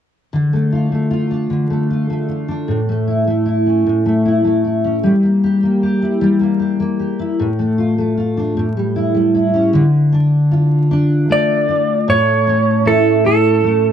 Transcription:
0.33 1.49 D3 soft
0.53 0.91 A3 soft
0.72 1.09 F4 soft
0.92 1.70 A3 soft
1.11 1.89 F4 soft
1.31 2.47 D4 soft
1.50 2.76 D3 medium
1.70 2.09 A3 soft
1.90 2.27 F4 soft
2.10 2.88 A3 soft
2.28 2.76 F4 soft
2.48 2.76 D4 soft
2.68 3.85 A2 medium
2.89 3.26 A3 soft
3.08 3.45 E4 soft
3.27 4.04 A3 soft
3.46 4.25 E4 soft
3.66 4.83 C#4 soft
3.86 5.12 A2 medium
4.06 4.43 A3 soft
4.25 4.64 E4 soft
4.45 5.11 A3 soft
4.64 5.26 E4 soft
4.84 5.12 C#4 soft
5.03 6.20 G3 medium
5.23 5.62 A#3 soft
5.44 5.82 G4 soft
5.63 6.39 A#3 soft
5.83 6.58 G4 soft
6.02 7.18 E4 soft
6.21 7.47 G3 medium
6.41 6.79 A#3 soft
6.60 6.98 G4 soft
6.80 7.46 A#3 soft
6.99 7.46 G4 soft
7.19 7.47 E4 soft
7.39 8.56 A2 medium
7.59 7.98 A3 soft
7.78 8.16 F4 soft
7.98 8.77 A3 soft
8.17 8.64 F4 soft
8.37 8.64 D4 soft
8.57 9.82 A2 medium
8.77 9.13 G3 soft
8.96 9.33 E4 soft
9.14 9.81 G3 soft
9.34 9.81 E4 soft
9.54 9.81 C#4 soft
9.73 12.08 D3 medium
10.13 10.90 D4 soft
10.51 11.67 F4 soft
10.91 12.16 D4 soft
11.29 13.64 A3 soft
11.29 12.09 D5 medium
11.69 12.16 F4 soft
12.08 13.92 A2 medium
12.08 12.89 C#5 medium
12.47 13.24 C#4 soft
12.85 13.92 E4 medium
12.85 13.25 A4 medium
13.25 13.92 C#4 soft
13.25 13.92 A4 medium
13.64 13.92 A3 soft

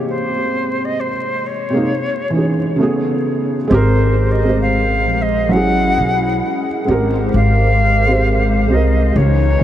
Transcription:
0.00 1.07 C3 medium
0.00 1.08 G#3 medium
0.00 1.10 A#3 medium
0.00 1.11 G4 medium
0.09 0.86 C5 medium
0.84 1.01 D#5 medium
1.00 1.48 C5 medium
1.46 2.81 C#5 medium
1.70 1.87 C3 medium
1.70 1.88 G#3 medium
1.75 1.89 A#3 medium
1.75 1.90 D#4 medium
2.30 2.77 E3 medium
2.30 2.78 C#4 soft
2.35 2.79 D#4 medium
2.35 2.81 G#4 medium
2.76 3.56 C#3 medium
2.76 3.57 A3 medium
2.81 3.58 B3 medium
2.81 3.59 G#4 loud
3.68 5.07 G#1 loud
3.68 4.24 G#3 loud
3.68 5.50 G#3 medium
3.68 4.25 C4 loud
3.68 5.50 G4 medium
3.68 5.50 A#4 medium
3.68 5.50 C5 medium
3.72 4.26 G4 loud
3.72 4.27 A#4 loud
3.72 4.33 C5 medium
4.31 4.61 D#5 medium
4.42 5.50 G#3 medium
4.42 5.51 C4 medium
4.47 5.52 G4 medium
4.47 5.54 C5 medium
4.61 5.23 F5 medium
5.07 5.52 A#1 medium
5.22 5.53 D#5 medium
5.49 5.94 G#1 loud
5.49 6.65 F#3 medium
5.49 6.66 C#4 medium
5.49 6.86 C#4 medium
5.49 6.86 E4 medium
5.49 6.86 G#4 medium
5.49 6.88 F#5 loud
5.53 6.67 E4 medium
5.53 6.68 G#4 medium
5.98 6.40 B1 medium
6.85 7.30 G#1 medium
6.85 7.77 G#3 medium
6.85 9.13 G#3 medium
6.85 7.78 C4 medium
6.85 9.13 G4 medium
6.85 9.13 A#4 medium
6.85 9.13 C5 medium
6.89 7.79 G4 medium
6.89 7.80 A#4 medium
7.34 8.70 G#1 medium
7.34 8.73 F5 loud
8.06 8.57 G#3 medium
8.06 8.59 C4 medium
8.10 8.60 G4 medium
8.10 8.61 C5 medium
8.67 9.12 C2 medium
8.67 9.14 G#3 medium
8.67 9.15 C4 medium
8.71 9.16 G4 medium
8.71 9.17 A#4 medium
8.71 9.18 D#5 medium
9.15 9.58 C#2 medium
9.15 9.64 C#3 medium
9.15 9.64 E3 medium
9.15 9.64 C#4 medium
9.15 9.64 D#4 medium
9.15 9.64 C#5 medium
9.59 9.64 E3 medium

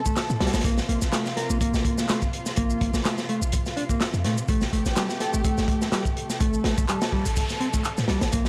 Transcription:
0.00 8.28 C3 medium
0.00 0.60 A3 medium
0.00 0.63 A4 medium
0.06 0.15 A3 medium
0.06 kick medium
0.06 shaker medium
0.16 snare loud
0.16 clap loud
0.16 closed hi-hat medium
0.16 shaker soft
0.30 0.37 A2 medium
0.30 shaker soft
0.40 0.49 C2 medium
0.40 0.52 G3 loud
0.40 snare loud
0.40 closed hi-hat medium
0.47 snare medium
0.47 closed hi-hat medium
0.54 0.61 A1 loud
0.54 snare medium
0.54 closed hi-hat medium
0.54 shaker medium
0.59 snare medium
0.59 closed hi-hat medium
0.64 0.80 A#1 loud
0.64 0.77 A#3 loud
0.64 4.45 F4 medium
0.64 kick loud
0.64 closed hi-hat medium
0.64 shaker soft
0.78 snare medium
0.78 shaker soft
0.89 0.97 A#1 loud
0.89 1.00 A#3 medium
0.89 closed hi-hat medium
1.02 1.09 A#1 loud
1.02 snare soft
1.02 shaker medium
1.13 1.24 A3 medium
1.13 snare loud
1.13 clap loud
1.13 closed hi-hat loud
1.13 shaker medium
1.26 snare soft
1.26 shaker soft
1.37 1.49 A#4 medium
1.37 snare soft
1.37 closed hi-hat medium
1.50 1.60 A#1 medium
1.50 1.60 A#3 loud
1.50 shaker medium
1.61 2.08 A#3 loud
1.61 kick loud
1.61 closed hi-hat medium
1.61 shaker medium
1.74 1.81 A#1 medium
1.74 snare medium
1.74 shaker soft
1.85 kick loud
1.85 closed hi-hat medium
1.98 snare soft
1.98 shaker medium
2.09 2.20 A3 medium
2.09 snare loud
2.09 clap loud
2.09 closed hi-hat medium
2.09 shaker soft
2.22 kick medium
2.22 shaker soft
2.33 closed hi-hat medium
2.46 snare soft
2.46 shaker medium
2.56 2.73 A#1 loud
2.56 2.93 A#3 loud
2.56 kick loud
2.56 closed hi-hat medium
2.56 shaker soft
2.70 shaker soft
2.81 2.89 A#1 loud
2.81 kick loud
2.81 closed hi-hat medium
2.94 3.00 A#1 loud
2.94 3.03 A#3 medium
2.94 snare medium
2.94 shaker medium
3.05 3.16 A3 medium
3.05 snare loud
3.05 clap loud
3.05 closed hi-hat medium
3.05 shaker medium
3.18 snare medium
3.18 shaker soft
3.29 3.40 A3 loud
3.29 closed hi-hat medium
3.42 3.56 A#1 medium
3.42 shaker medium
3.52 kick loud
3.52 closed hi-hat medium
3.52 shaker medium
3.66 snare soft
3.66 shaker soft
3.77 3.83 D4 loud
3.77 closed hi-hat medium
3.89 3.99 A#3 medium
3.89 kick medium
3.89 shaker medium
4.00 snare loud
4.00 clap loud
4.00 closed hi-hat medium
4.00 shaker soft
4.14 4.26 F2 medium
4.14 shaker soft
4.24 4.41 A#2 medium
4.24 4.35 A3 loud
4.24 snare soft
4.24 closed hi-hat medium
4.38 shaker medium
4.48 4.64 A1 loud
4.48 8.29 A3 medium
4.48 4.61 A3 loud
4.48 6.39 G4 medium
4.48 kick loud
4.48 closed hi-hat medium
4.48 shaker soft
4.61 snare medium
4.61 shaker soft
4.73 4.81 A1 loud
4.73 4.83 A3 medium
4.73 closed hi-hat medium
4.86 4.93 A1 loud
4.86 snare soft
4.86 shaker medium
4.97 5.07 G3 medium
4.97 snare loud
4.97 clap loud
4.97 closed hi-hat medium
4.97 shaker medium
5.09 snare soft
5.09 shaker soft
5.20 5.33 A4 medium
5.20 snare soft
5.20 closed hi-hat medium
5.33 5.44 A1 medium
5.33 5.43 A3 loud
5.33 shaker medium
5.44 5.55 A1 soft
5.44 5.91 A3 loud
5.44 kick loud
5.44 closed hi-hat medium
5.44 shaker medium
5.58 5.65 A1 medium
5.58 snare soft
5.58 shaker soft
5.68 kick loud
5.68 closed hi-hat medium
5.82 snare soft
5.82 shaker medium
5.92 6.03 G3 medium
5.92 snare loud
5.92 clap loud
5.92 closed hi-hat medium
5.92 shaker soft
6.05 kick loud
6.05 shaker soft
6.17 closed hi-hat medium
6.30 snare soft
6.30 shaker medium
6.40 6.56 A1 loud
6.40 6.76 A3 loud
6.40 8.31 A4 medium
6.40 kick loud
6.40 closed hi-hat medium
6.40 noise sweep medium
6.40 shaker medium
6.54 shaker soft
6.64 6.73 A1 loud
6.64 snare loud
6.64 closed hi-hat medium
6.77 6.85 A1 medium
6.77 6.87 A3 medium
6.77 kick medium
6.77 shaker medium
6.89 6.99 G3 medium
6.89 clap loud
6.89 closed hi-hat medium
6.89 shaker medium
7.02 snare loud
7.02 closed hi-hat medium
7.02 shaker soft
7.12 7.23 G3 loud
7.12 kick medium
7.25 7.40 A1 medium
7.25 closed hi-hat medium
7.25 shaker medium
7.36 kick loud
7.36 closed hi-hat medium
7.36 shaker medium
7.49 snare soft
7.49 shaker soft
7.60 7.67 C4 loud
7.60 closed hi-hat medium
7.74 7.83 A3 medium
7.74 kick medium
7.74 shaker medium
7.84 clap loud
7.84 closed hi-hat medium
7.84 shaker soft
7.97 8.05 A2 medium
7.97 snare soft
7.97 shaker soft
8.08 8.17 C2 medium
8.08 8.19 G3 loud
8.08 snare loud
8.08 closed hi-hat medium
8.21 8.29 A1 loud
8.21 snare loud
8.21 closed hi-hat medium
8.21 shaker medium
8.32 8.49 A#1 loud
8.32 8.49 C3 medium
8.32 8.45 A#3 loud
8.32 8.49 F4 medium
8.32 kick loud
8.32 closed hi-hat loud
8.32 shaker medium
8.45 snare medium
8.45 shaker soft

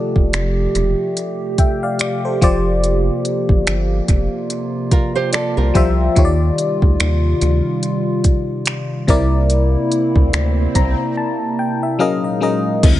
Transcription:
0.00 11.96 C3 medium
0.00 0.62 F3 medium
0.00 2.39 A3 medium
0.00 0.62 F4 medium
0.00 0.63 G4 medium
0.00 4.04 G4 medium
0.00 0.63 A4 medium
0.00 0.63 D5 medium
0.16 0.30 E1 medium
0.16 kick medium
0.33 0.67 F1 loud
0.33 finger snap loud
0.33 closed hi-hat medium
0.75 0.95 E1 medium
0.75 closed hi-hat medium
1.17 closed hi-hat medium
1.58 1.82 E5 medium
1.58 1.81 G5 medium
1.58 kick medium
1.58 closed hi-hat medium
1.83 1.99 D5 medium
1.83 1.99 F5 medium
1.99 2.23 D5 medium
1.99 finger snap loud
1.99 closed hi-hat medium
2.25 2.64 A4 soft
2.25 2.42 C5 medium
2.41 3.10 F1 medium
2.41 3.76 F3 medium
2.41 6.13 A#3 medium
2.41 3.76 F4 medium
2.41 3.77 G4 medium
2.41 3.77 C5 medium
2.41 3.77 D5 loud
2.41 kick loud
2.41 closed hi-hat medium
2.84 closed hi-hat medium
3.25 closed hi-hat medium
3.49 3.63 G1 medium
3.49 kick medium
3.67 4.01 G1 loud
3.67 finger snap loud
3.67 closed hi-hat medium
4.08 4.28 F1 medium
4.08 9.04 F4 medium
4.08 kick medium
4.08 closed hi-hat medium
4.50 closed hi-hat medium
4.91 5.15 F4 medium
4.91 5.15 A#4 medium
4.91 kick medium
4.91 closed hi-hat medium
5.16 5.33 G4 medium
5.16 5.32 C5 medium
5.33 5.56 A4 medium
5.33 5.56 D5 medium
5.33 5.72 D5 medium
5.33 finger snap loud
5.33 closed hi-hat medium
5.57 5.72 C2 medium
5.57 6.14 F4 medium
5.57 6.13 A#4 medium
5.74 6.09 C2 medium
5.74 6.04 F3 medium
5.74 6.04 F4 medium
5.74 6.05 G4 medium
5.74 6.05 C5 medium
5.74 6.05 E5 loud
5.74 6.14 G5 medium
5.74 kick medium
5.74 closed hi-hat medium
6.15 6.51 D#2 loud
6.15 7.28 D#3 medium
6.15 9.05 G3 medium
6.15 7.29 D#4 medium
6.15 7.29 F4 medium
6.15 7.29 G4 medium
6.15 6.25 C#5 medium
6.15 kick loud
6.15 closed hi-hat medium
6.15 swell medium
6.25 7.33 D5 loud
6.58 closed hi-hat medium
6.82 6.97 D2 medium
6.82 kick medium
7.00 7.34 D#2 loud
7.00 finger snap loud
7.00 closed hi-hat medium
7.41 7.62 D2 medium
7.41 closed hi-hat medium
7.83 closed hi-hat medium
8.24 kick loud
8.24 closed hi-hat medium
8.66 finger snap loud
8.66 closed hi-hat medium
9.07 9.76 C2 loud
9.07 10.42 C3 medium
9.07 11.97 A#3 medium
9.07 10.43 C4 medium
9.07 11.97 E4 medium
9.07 10.43 E4 medium
9.07 10.43 A#4 medium
9.07 10.44 D5 loud
9.07 kick loud
9.07 closed hi-hat medium
9.50 closed hi-hat medium
9.92 closed hi-hat medium
10.16 10.30 D2 loud
10.16 kick medium
10.33 10.67 D2 loud
10.33 finger snap loud
10.33 closed hi-hat medium
10.75 10.95 C2 loud
10.75 11.14 A#5 medium
10.75 kick medium
10.75 closed hi-hat medium
11.17 11.56 A5 medium
11.59 11.81 G5 medium
11.83 11.99 E5 medium
11.99 12.82 A#2 medium
11.99 12.34 F#3 medium
11.99 12.82 G#3 medium
11.99 12.34 C#4 medium
11.99 12.82 D#4 medium
11.99 12.35 G#4 medium
11.99 12.35 A#4 medium
11.99 12.23 D#5 loud
11.99 12.22 F5 medium
12.24 12.42 D#5 medium
12.41 12.71 F#3 medium
12.41 12.71 C#4 medium
12.41 12.71 G#4 medium
12.41 12.72 A#4 medium
12.41 12.72 D#5 medium
12.83 13.00 D2 loud
12.83 13.00 C3 medium
12.83 13.00 D3 medium
12.83 13.00 G3 medium
12.83 13.00 C4 medium
12.83 13.00 E4 medium
12.83 13.00 E5 medium
12.83 kick loud
12.83 closed hi-hat medium
12.83 crash loud

